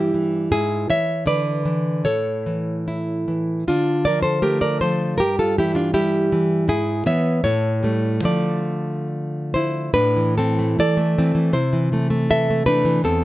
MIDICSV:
0, 0, Header, 1, 2, 480
1, 0, Start_track
1, 0, Key_signature, -1, "minor"
1, 0, Tempo, 746269
1, 334, Time_signature, 2, 2, 24, 8
1, 819, Tempo, 791557
1, 2739, Tempo, 750000
1, 4659, Tempo, 833333
1, 6104, Key_signature, 0, "minor"
1, 6579, Tempo, 749064
1, 8160, End_track
2, 0, Start_track
2, 0, Title_t, "Nylon-string guitar"
2, 0, Program_c, 0, 24
2, 0, Note_on_c, 0, 43, 52
2, 0, Note_on_c, 0, 52, 41
2, 0, Note_on_c, 0, 55, 44
2, 0, Note_on_c, 0, 64, 54
2, 0, Note_on_c, 0, 67, 77
2, 84, Note_off_c, 0, 52, 0
2, 92, Note_on_c, 0, 52, 45
2, 308, Note_off_c, 0, 43, 0
2, 311, Note_off_c, 0, 64, 0
2, 312, Note_off_c, 0, 67, 0
2, 332, Note_off_c, 0, 52, 0
2, 332, Note_off_c, 0, 55, 0
2, 332, Note_on_c, 0, 44, 58
2, 333, Note_on_c, 0, 68, 84
2, 340, Note_on_c, 0, 64, 63
2, 561, Note_off_c, 0, 64, 0
2, 563, Note_off_c, 0, 68, 0
2, 573, Note_off_c, 0, 44, 0
2, 575, Note_on_c, 0, 52, 48
2, 577, Note_on_c, 0, 73, 62
2, 581, Note_on_c, 0, 76, 87
2, 802, Note_off_c, 0, 73, 0
2, 809, Note_on_c, 0, 50, 47
2, 811, Note_off_c, 0, 76, 0
2, 818, Note_on_c, 0, 74, 86
2, 821, Note_on_c, 0, 71, 64
2, 1043, Note_off_c, 0, 52, 0
2, 1050, Note_on_c, 0, 52, 43
2, 1271, Note_off_c, 0, 71, 0
2, 1275, Note_off_c, 0, 74, 0
2, 1289, Note_off_c, 0, 50, 0
2, 1289, Note_on_c, 0, 73, 68
2, 1292, Note_off_c, 0, 52, 0
2, 1292, Note_on_c, 0, 45, 52
2, 1293, Note_on_c, 0, 69, 57
2, 1541, Note_on_c, 0, 52, 40
2, 1792, Note_on_c, 0, 64, 39
2, 2003, Note_off_c, 0, 73, 0
2, 2005, Note_off_c, 0, 69, 0
2, 2028, Note_off_c, 0, 52, 0
2, 2035, Note_on_c, 0, 52, 38
2, 2245, Note_off_c, 0, 45, 0
2, 2273, Note_off_c, 0, 52, 0
2, 2274, Note_off_c, 0, 64, 0
2, 2275, Note_on_c, 0, 50, 52
2, 2278, Note_on_c, 0, 65, 69
2, 2286, Note_on_c, 0, 62, 51
2, 2498, Note_off_c, 0, 62, 0
2, 2500, Note_off_c, 0, 65, 0
2, 2503, Note_on_c, 0, 74, 80
2, 2504, Note_on_c, 0, 53, 41
2, 2514, Note_on_c, 0, 70, 60
2, 2607, Note_off_c, 0, 74, 0
2, 2609, Note_on_c, 0, 72, 72
2, 2614, Note_off_c, 0, 70, 0
2, 2616, Note_on_c, 0, 69, 54
2, 2726, Note_off_c, 0, 69, 0
2, 2729, Note_on_c, 0, 57, 42
2, 2729, Note_on_c, 0, 70, 80
2, 2732, Note_off_c, 0, 72, 0
2, 2732, Note_on_c, 0, 67, 61
2, 2844, Note_off_c, 0, 70, 0
2, 2848, Note_off_c, 0, 67, 0
2, 2850, Note_on_c, 0, 74, 70
2, 2852, Note_on_c, 0, 70, 54
2, 2969, Note_off_c, 0, 70, 0
2, 2972, Note_off_c, 0, 53, 0
2, 2974, Note_off_c, 0, 74, 0
2, 2976, Note_on_c, 0, 72, 78
2, 2980, Note_on_c, 0, 53, 44
2, 2989, Note_on_c, 0, 69, 55
2, 3202, Note_off_c, 0, 50, 0
2, 3208, Note_off_c, 0, 72, 0
2, 3211, Note_off_c, 0, 69, 0
2, 3211, Note_on_c, 0, 70, 86
2, 3215, Note_on_c, 0, 43, 56
2, 3219, Note_off_c, 0, 57, 0
2, 3223, Note_off_c, 0, 53, 0
2, 3226, Note_on_c, 0, 67, 63
2, 3337, Note_off_c, 0, 67, 0
2, 3338, Note_off_c, 0, 70, 0
2, 3348, Note_on_c, 0, 69, 71
2, 3352, Note_on_c, 0, 65, 52
2, 3460, Note_off_c, 0, 65, 0
2, 3467, Note_off_c, 0, 69, 0
2, 3471, Note_on_c, 0, 52, 43
2, 3472, Note_on_c, 0, 67, 73
2, 3479, Note_on_c, 0, 64, 56
2, 3575, Note_off_c, 0, 67, 0
2, 3577, Note_on_c, 0, 65, 74
2, 3583, Note_off_c, 0, 64, 0
2, 3584, Note_on_c, 0, 62, 54
2, 3694, Note_off_c, 0, 62, 0
2, 3697, Note_off_c, 0, 65, 0
2, 3697, Note_on_c, 0, 55, 45
2, 3699, Note_on_c, 0, 67, 78
2, 3700, Note_on_c, 0, 64, 60
2, 3937, Note_off_c, 0, 52, 0
2, 3945, Note_on_c, 0, 52, 50
2, 4144, Note_off_c, 0, 43, 0
2, 4147, Note_off_c, 0, 64, 0
2, 4152, Note_off_c, 0, 67, 0
2, 4172, Note_off_c, 0, 55, 0
2, 4172, Note_on_c, 0, 44, 66
2, 4178, Note_off_c, 0, 52, 0
2, 4178, Note_on_c, 0, 64, 70
2, 4180, Note_on_c, 0, 68, 90
2, 4399, Note_off_c, 0, 64, 0
2, 4407, Note_off_c, 0, 68, 0
2, 4414, Note_off_c, 0, 44, 0
2, 4416, Note_on_c, 0, 59, 56
2, 4417, Note_on_c, 0, 52, 48
2, 4419, Note_on_c, 0, 73, 76
2, 4422, Note_on_c, 0, 76, 96
2, 4636, Note_off_c, 0, 59, 0
2, 4637, Note_off_c, 0, 52, 0
2, 4646, Note_off_c, 0, 73, 0
2, 4654, Note_off_c, 0, 76, 0
2, 4659, Note_on_c, 0, 45, 65
2, 4659, Note_on_c, 0, 73, 97
2, 4666, Note_on_c, 0, 69, 71
2, 4881, Note_off_c, 0, 69, 0
2, 4883, Note_on_c, 0, 55, 45
2, 4891, Note_on_c, 0, 57, 52
2, 5101, Note_on_c, 0, 50, 53
2, 5102, Note_off_c, 0, 55, 0
2, 5106, Note_off_c, 0, 57, 0
2, 5108, Note_off_c, 0, 73, 0
2, 5110, Note_off_c, 0, 45, 0
2, 5113, Note_on_c, 0, 53, 44
2, 5118, Note_on_c, 0, 57, 42
2, 5127, Note_on_c, 0, 74, 75
2, 5131, Note_on_c, 0, 69, 58
2, 5598, Note_off_c, 0, 69, 0
2, 5599, Note_off_c, 0, 74, 0
2, 5869, Note_on_c, 0, 72, 77
2, 5879, Note_on_c, 0, 64, 61
2, 6068, Note_off_c, 0, 50, 0
2, 6074, Note_off_c, 0, 53, 0
2, 6076, Note_off_c, 0, 57, 0
2, 6095, Note_off_c, 0, 64, 0
2, 6096, Note_off_c, 0, 72, 0
2, 6098, Note_on_c, 0, 71, 84
2, 6099, Note_on_c, 0, 45, 69
2, 6104, Note_on_c, 0, 62, 61
2, 6229, Note_on_c, 0, 52, 48
2, 6326, Note_off_c, 0, 62, 0
2, 6329, Note_off_c, 0, 71, 0
2, 6348, Note_off_c, 0, 52, 0
2, 6351, Note_on_c, 0, 69, 92
2, 6354, Note_on_c, 0, 52, 50
2, 6358, Note_on_c, 0, 60, 66
2, 6473, Note_on_c, 0, 57, 52
2, 6571, Note_off_c, 0, 60, 0
2, 6575, Note_off_c, 0, 69, 0
2, 6581, Note_off_c, 0, 52, 0
2, 6586, Note_off_c, 0, 45, 0
2, 6588, Note_on_c, 0, 52, 50
2, 6595, Note_on_c, 0, 74, 98
2, 6599, Note_on_c, 0, 69, 73
2, 6699, Note_off_c, 0, 57, 0
2, 6707, Note_on_c, 0, 57, 48
2, 6836, Note_off_c, 0, 52, 0
2, 6843, Note_on_c, 0, 52, 47
2, 6843, Note_on_c, 0, 60, 57
2, 6940, Note_off_c, 0, 52, 0
2, 6948, Note_on_c, 0, 52, 54
2, 7050, Note_off_c, 0, 60, 0
2, 7050, Note_off_c, 0, 69, 0
2, 7055, Note_off_c, 0, 74, 0
2, 7063, Note_on_c, 0, 48, 66
2, 7066, Note_on_c, 0, 72, 83
2, 7067, Note_off_c, 0, 52, 0
2, 7067, Note_off_c, 0, 57, 0
2, 7072, Note_on_c, 0, 64, 62
2, 7191, Note_on_c, 0, 52, 51
2, 7307, Note_off_c, 0, 52, 0
2, 7315, Note_on_c, 0, 52, 51
2, 7321, Note_on_c, 0, 57, 54
2, 7424, Note_off_c, 0, 57, 0
2, 7432, Note_on_c, 0, 57, 51
2, 7519, Note_off_c, 0, 64, 0
2, 7522, Note_off_c, 0, 72, 0
2, 7551, Note_off_c, 0, 52, 0
2, 7557, Note_on_c, 0, 52, 51
2, 7562, Note_on_c, 0, 76, 105
2, 7563, Note_on_c, 0, 69, 72
2, 7680, Note_off_c, 0, 57, 0
2, 7688, Note_on_c, 0, 57, 52
2, 7775, Note_off_c, 0, 69, 0
2, 7780, Note_off_c, 0, 52, 0
2, 7780, Note_off_c, 0, 57, 0
2, 7781, Note_off_c, 0, 76, 0
2, 7786, Note_on_c, 0, 52, 50
2, 7788, Note_on_c, 0, 57, 56
2, 7790, Note_on_c, 0, 71, 94
2, 7800, Note_on_c, 0, 62, 75
2, 7901, Note_off_c, 0, 52, 0
2, 7909, Note_on_c, 0, 52, 60
2, 7996, Note_off_c, 0, 48, 0
2, 8002, Note_off_c, 0, 57, 0
2, 8016, Note_off_c, 0, 62, 0
2, 8016, Note_off_c, 0, 71, 0
2, 8026, Note_off_c, 0, 52, 0
2, 8031, Note_on_c, 0, 40, 70
2, 8036, Note_on_c, 0, 69, 83
2, 8039, Note_on_c, 0, 60, 59
2, 8160, Note_off_c, 0, 40, 0
2, 8160, Note_off_c, 0, 60, 0
2, 8160, Note_off_c, 0, 69, 0
2, 8160, End_track
0, 0, End_of_file